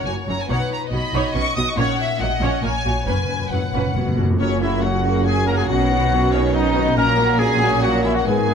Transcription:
Already playing: harp F#2 C#4 A#4 F#5 A#5, violin section C#5
0.05 double bass section F#1, cello section F#2, viola section A#3 F#4, harp C#5, violin section G#5
0.27 double bass section F#1, cello section F#2, viola section F#3 C#4, harp F#4, violin section A#5
0.41 violin section G#5
0.48 double bass section B1, cello section B2, harp B2, viola section D#4 C#5, violin section B4 F#5
0.71 harp D#4, violin section A#5
0.91 double bass section B1, cello section B2, viola section B3 F#4, harp C#5, violin section D#5 B5
1.13 double bass section B1, cello section B2, viola section D#4 C#5, harp F#5
1.35 double bass section B1, cello section B2, viola section C#4 B4, harp D#5, violin section C#6
1.56 double bass section B1, cello section B2, viola section B3 F#4, harp F#4, violin section D#6
1.68 violin section C#6
1.77 double bass section A#1, harp A#2, cello section A#2, viola section C#4 C#5, violin section C#5 F#5
1.99 harp C#4, violin section E5
2.20 double bass section A#1, cello section A#2, viola section F#3 F#4, harp C#5, violin section D#5 F#5
2.40 double bass section A#1, cello section A#2, viola section C#4 C#5, harp F#5
2.63 double bass section A#1, cello section A#2, viola section A#3 A#4, harp C#5, violin section C#5 G#5
2.85 double bass section A#1, cello section A#2, viola section F#3 F#4, harp F#4
3.06 double bass section F#1, cello section F#2, harp F#2, timpani F#2, viola section C#4 B4, violin section B4 G#5
3.17 timpani F#2
3.24 timpani F#2
3.30 timpani F#2, harp C#4
3.39 timpani F#2
3.47 timpani F#2
3.51 double bass section F#1, cello section F#2, timpani F#2, viola section F#3 C#4, harp B4, violin section F#5
3.63 timpani F#2
3.70 double bass section F#1, timpani F#2, harp F#5
3.74 timpani F#2, cello section A#2, viola section C#4 B4
3.86 timpani F#2
3.94 double bass section F#1, timpani F#2, cello section B2, viola section B3 F#4, harp C#5
4.01 timpani F#2
4.08 timpani F#2
4.17 double bass section F#1, timpani F#2, viola section F#3 C#4, harp F#4
4.23 timpani F#2
4.31 timpani F#2
4.39 double bass section F#1, harp F#2, cello section F#2, trombone section C#3 F#3, viola section F#3, french horn section A#3 C#4, violin section C#4 C#5, trumpet section C#4, clarinet C#4, flute section C#5
4.60 viola section C#3 A#3, violin section A#3 F#4 E5, harp C#4, clarinet E4, trumpet section E4, flute section E5
4.83 viola section F#3, violin section C#4 F#5, trumpet section F#4, clarinet F#4, harp A#4, flute section F#5
5.04 viola section C#3 A#3, violin section A#3 F#4, harp F#5
5.25 viola section F#3, violin section C#4 G#5, trumpet section G#4, clarinet G#4, harp C#5, flute section G#5
5.46 viola section C#3 A#3, violin section A#3 F#4 A#5, harp F#4, clarinet A#4, trumpet section A#4, flute section A#5
5.57 clarinet G#4, trumpet section G#4, violin section G#5, flute section G#5
5.68 double bass section B1, harp B2, cello section B2, trombone section D#3, viola section F#3, french horn section B3, violin section B3 C#4 F#5, clarinet F#4, trumpet section F#4, flute section F#5
5.90 viola section D#3 B3, violin section B3 C#4, harp D#4
6.12 viola section F#3, violin section B3 C#4, harp C#5
6.32 viola section D#3 B3, violin section B3 C#4 C#5, clarinet C#4, trumpet section C#4, flute section C#5, harp F#5
6.54 viola section F#3, violin section B3 C#4 D#5, trumpet section D#4, clarinet D#4, harp D#5, flute section D#5
6.76 viola section D#3 B3, violin section B3 C#4, harp F#4
6.96 double bass section A#1, harp A#2, trombone section A#2 F#3, cello section A#2, viola section F#3 A#3, violin section C#4 A#5, french horn section C#4 A#4, trumpet section A#4, clarinet A#4, flute section A#5
7.18 viola section F#3 A#3, violin section A#3 F#4, harp C#4
7.38 viola section F#3 A#3, violin section C#4 G#5, clarinet G#4, trumpet section G#4, harp A#4
7.42 flute section G#5
7.61 viola section F#3 A#3, violin section A#3 F#4, harp F#5
7.82 viola section F#3 A#3, violin section C#4 F#5, trumpet section F#4, clarinet F#4, harp C#5, flute section F#5
8.04 viola section F#3 A#3, violin section A#3 F#4 E5, clarinet E4, trumpet section E4, harp F#4, flute section E5
8.14 clarinet F#4, trumpet section F#4, violin section F#5, flute section F#5
8.25 double bass section G#1, harp G#2, cello section G#2, trombone section B2 D#3, viola section G#3, violin section B3 G#5, french horn section D#4, clarinet G#4, trumpet section G#4, flute section G#5
8.48 viola section D#3 A#3, violin section A#3, harp B3

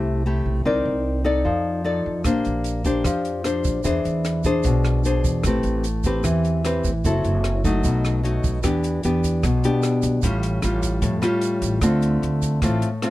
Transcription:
Already playing: upright bass C2, nylon-string guitar C3 A3 E4 G4
0.26 nylon-string guitar A3 E4 G4
0.46 upright bass B1
0.65 upright bass C2, nylon-string guitar C4 D#4 A#4 D5
0.85 upright bass C2
1.24 nylon-string guitar D#4 A4 D5
1.45 upright bass F2, nylon-string guitar F3
1.84 nylon-string guitar D#4 A4 D5
2.06 upright bass F2
2.24 upright bass A#1, nylon-string guitar A#3 D4 G4 C5, kick, cross-stick, closed hi-hat, shaker
2.45 upright bass A#1, closed hi-hat, shaker
2.64 closed hi-hat, shaker
2.84 nylon-string guitar D4 G4 C5, kick, closed hi-hat, shaker
3.04 upright bass F2, nylon-string guitar F3, kick, cross-stick, closed hi-hat, shaker
3.25 closed hi-hat, shaker
3.44 nylon-string guitar D4 G4 C5, cross-stick, closed hi-hat, shaker
3.64 upright bass A#1, kick, closed hi-hat, shaker
3.84 upright bass E2, nylon-string guitar E3 D4 G#4 C5, kick, closed hi-hat, shaker
4.05 upright bass E2, closed hi-hat, shaker
4.25 cross-stick, closed hi-hat, shaker
4.44 nylon-string guitar D4 G#4 C5, kick, closed hi-hat, shaker
4.63 upright bass B1, nylon-string guitar B2, kick, closed hi-hat, shaker
4.84 cross-stick, closed hi-hat, shaker
5.04 nylon-string guitar D4 G#4 C5, closed hi-hat, shaker
5.24 upright bass E2, kick, closed hi-hat, shaker
5.44 upright bass A1, nylon-string guitar A3 C4 G4, kick, cross-stick, closed hi-hat, shaker
5.48 nylon-string guitar B4
5.63 upright bass A1, closed hi-hat, shaker
5.84 closed hi-hat, shaker
6.04 nylon-string guitar C4 G4 B4, kick, closed hi-hat, shaker
6.24 upright bass E2, nylon-string guitar E3, kick, cross-stick, closed hi-hat, shaker
6.44 closed hi-hat, shaker
6.65 nylon-string guitar C4 G4 B4, cross-stick, closed hi-hat, shaker
6.84 upright bass A1, kick, closed hi-hat, shaker
7.04 upright bass F#1, nylon-string guitar F#3 C4 E4 A4, kick, closed hi-hat, shaker
7.24 upright bass F#1, closed hi-hat, shaker
7.44 cross-stick, closed hi-hat
7.64 nylon-string guitar F#3 A3 D#4, kick, closed hi-hat, shaker
7.84 upright bass B1, nylon-string guitar B2, kick, closed hi-hat, shaker
8.04 cross-stick, closed hi-hat, shaker
8.23 nylon-string guitar F#3 A3 D#4, closed hi-hat
8.44 upright bass B1, kick, closed hi-hat, shaker
8.63 upright bass E2, nylon-string guitar E3 B3 D4 G4, kick, cross-stick, closed hi-hat, shaker
8.84 closed hi-hat, shaker
9.03 upright bass E2, nylon-string guitar B3 D4 G4, closed hi-hat, shaker
9.24 kick, closed hi-hat, shaker
9.43 upright bass B1, nylon-string guitar B2, kick, cross-stick, closed hi-hat, shaker
9.64 nylon-string guitar B3 D4 G4, closed hi-hat, shaker
9.83 cross-stick, closed hi-hat, shaker
10.02 upright bass B1, kick, closed hi-hat, shaker
10.22 upright bass A1, nylon-string guitar A2 G3 C#4 F4, kick, closed hi-hat, shaker
10.43 closed hi-hat, shaker
10.62 upright bass A1, nylon-string guitar G3 C#4 F4, cross-stick, closed hi-hat, shaker
10.82 kick, closed hi-hat, shaker
11.02 upright bass F2, nylon-string guitar A2, kick, closed hi-hat, shaker
11.22 nylon-string guitar G3 C#4 F4, cross-stick, closed hi-hat, shaker
11.41 closed hi-hat, shaker
11.62 upright bass A1, kick, closed hi-hat, shaker
11.82 upright bass D2, nylon-string guitar D3 A3 C4 F4, kick, cross-stick, closed hi-hat, shaker
12.01 closed hi-hat, shaker
12.22 upright bass D2, closed hi-hat
12.42 kick, closed hi-hat, shaker
12.62 upright bass A1, nylon-string guitar A2 A3 C4 F4, kick, cross-stick, closed hi-hat, shaker
12.82 closed hi-hat, shaker
13.02 nylon-string guitar A3 C4 F4, cross-stick, closed hi-hat

